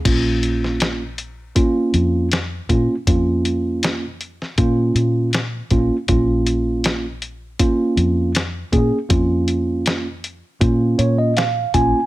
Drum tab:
CC |x---------------|----------------|----------------|----------------|
HH |x-x-x-x-x-x-x-x-|x-x-x-x-x-x-x-x-|x-x-x-x-x-x-x-x-|x-x-x-x-x-x-x-x-|
SD |---oo-------o---|----o--o----o---|----o-------o---|----o-------o---|
BD |o-------o-----o-|o-------o-----o-|o-------o-----o-|o-------o-----o-|